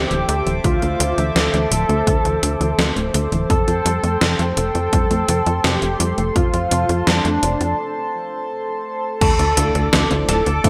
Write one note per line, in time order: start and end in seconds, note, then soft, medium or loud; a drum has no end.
0.00 0.48 G4 medium
0.00 3.46 A4 medium
0.00 9.17 C5 medium
0.00 3.46 E5 medium
0.00 3.46 D6 medium
0.11 0.24 D1 medium
0.11 0.25 E3 medium
0.11 closed hi-hat soft
0.28 0.42 D2 loud
0.28 0.43 D3 medium
0.28 closed hi-hat medium
0.46 0.60 D1 medium
0.46 0.55 E3 medium
0.46 closed hi-hat soft
0.64 0.78 D2 loud
0.64 0.79 F3 medium
0.64 1.19 F4 medium
0.64 kick loud
0.64 closed hi-hat medium
0.82 0.96 D2 medium
0.82 0.91 A3 loud
0.82 closed hi-hat soft
1.00 1.14 D2 medium
1.00 1.09 D3 medium
1.00 closed hi-hat medium
1.18 1.32 D2 medium
1.18 1.32 E3 medium
1.18 closed hi-hat soft
1.35 1.49 D2 loud
1.35 1.50 D3 medium
1.35 3.36 A4 loud
1.35 snare loud
1.35 closed hi-hat medium
1.53 1.67 D2 medium
1.53 1.62 E3 medium
1.53 closed hi-hat soft
1.71 1.85 D1 medium
1.71 1.86 F3 medium
1.71 closed hi-hat medium
1.89 2.03 D2 medium
1.89 1.98 A3 loud
1.89 closed hi-hat soft
2.07 2.21 D2 loud
2.07 2.16 D3 medium
2.07 kick loud
2.07 closed hi-hat medium
2.25 2.39 D2 medium
2.25 2.39 E3 medium
2.25 closed hi-hat soft
2.43 2.57 D2 medium
2.43 2.57 D3 medium
2.43 closed hi-hat medium
2.61 2.74 D2 medium
2.61 2.69 E3 medium
2.61 closed hi-hat soft
2.78 2.92 D2 loud
2.78 2.93 F3 medium
2.78 snare loud
2.78 closed hi-hat medium
2.96 3.10 D1 medium
2.96 3.05 A3 loud
2.96 closed hi-hat soft
3.14 3.28 D2 loud
3.14 3.23 D3 medium
3.14 closed hi-hat medium
3.32 3.46 D1 medium
3.32 3.46 E3 medium
3.32 closed hi-hat soft
3.50 3.64 F2 loud
3.50 3.64 C3 medium
3.50 9.17 A4 medium
3.50 4.43 A4 loud
3.50 6.33 G5 medium
3.50 9.17 C6 medium
3.50 kick loud
3.50 closed hi-hat medium
3.68 3.82 F2 medium
3.68 3.76 F3 medium
3.68 closed hi-hat soft
3.85 3.99 F2 medium
3.85 4.00 G3 medium
3.85 closed hi-hat medium
4.03 4.17 F2 medium
4.03 4.12 A3 medium
4.03 closed hi-hat soft
4.21 4.35 F2 loud
4.21 4.30 C3 medium
4.21 snare loud
4.21 closed hi-hat medium
4.39 4.53 F2 medium
4.39 4.54 F3 medium
4.39 closed hi-hat soft
4.57 4.71 F1 medium
4.57 4.71 C3 medium
4.57 5.66 A4 loud
4.57 closed hi-hat medium
4.75 4.89 F2 medium
4.75 4.84 F3 medium
4.75 closed hi-hat soft
4.93 5.07 F2 loud
4.93 5.07 G3 medium
4.93 kick loud
4.93 closed hi-hat medium
5.11 5.24 F2 medium
5.11 5.19 A3 loud
5.11 closed hi-hat soft
5.28 5.42 F2 medium
5.28 5.37 C3 medium
5.28 closed hi-hat medium
5.46 5.60 F2 medium
5.46 5.61 F3 medium
5.46 closed hi-hat soft
5.64 5.78 F2 loud
5.64 5.79 C3 medium
5.64 6.19 G4 medium
5.64 snare loud
5.64 closed hi-hat medium
5.82 5.96 F1 medium
5.82 5.91 F3 medium
5.82 closed hi-hat soft
6.00 6.14 F2 loud
6.00 6.14 G3 medium
6.00 closed hi-hat medium
6.18 6.32 F1 medium
6.18 6.26 A3 loud
6.18 closed hi-hat soft
6.36 6.49 F2 loud
6.36 6.44 C3 medium
6.36 7.09 F4 medium
6.36 9.18 A5 medium
6.36 kick loud
6.36 closed hi-hat medium
6.53 6.67 F2 medium
6.53 6.68 F3 medium
6.53 closed hi-hat soft
6.71 6.85 F2 loud
6.71 6.86 C3 medium
6.71 closed hi-hat medium
6.89 7.03 F2 medium
6.89 6.98 F3 medium
6.89 closed hi-hat soft
7.07 7.21 F2 loud
7.07 7.21 G3 medium
7.07 7.78 D4 loud
7.07 snare loud
7.07 closed hi-hat medium
7.25 7.39 F2 medium
7.25 7.34 A3 loud
7.25 closed hi-hat soft
7.43 7.57 F1 loud
7.43 7.51 C3 medium
7.43 closed hi-hat medium
7.61 7.74 F2 medium
7.61 7.75 F3 medium
7.61 closed hi-hat soft
9.21 9.35 D2 loud
9.21 10.14 A4 loud
9.21 10.69 A4 medium
9.21 10.69 D5 medium
9.21 10.14 A5 loud
9.21 10.69 D6 loud
9.21 kick loud
9.21 closed hi-hat medium
9.21 crash loud
9.21 sub drop medium
9.39 9.53 D2 medium
9.39 closed hi-hat soft
9.57 9.71 D2 medium
9.57 10.06 A3 medium
9.57 10.06 D4 medium
9.57 10.06 E4 medium
9.57 10.06 F4 medium
9.57 10.06 A4 medium
9.57 closed hi-hat loud
9.75 9.89 D2 medium
9.75 closed hi-hat soft
9.93 10.07 D2 loud
9.93 snare loud
9.93 closed hi-hat medium
10.11 10.25 D2 medium
10.11 10.34 A3 medium
10.11 10.34 D4 medium
10.11 10.34 E4 medium
10.11 10.34 F4 medium
10.11 10.34 C5 medium
10.11 closed hi-hat soft
10.28 10.42 D1 medium
10.28 10.69 A4 loud
10.28 10.69 A5 medium
10.28 snare soft
10.28 closed hi-hat loud
10.46 10.60 D2 medium
10.46 closed hi-hat soft
10.64 10.69 D2 loud
10.64 10.69 A3 loud
10.64 10.69 D4 medium
10.64 10.69 E4 medium
10.64 10.69 F4 medium
10.64 10.69 C5 loud
10.64 kick loud
10.64 closed hi-hat medium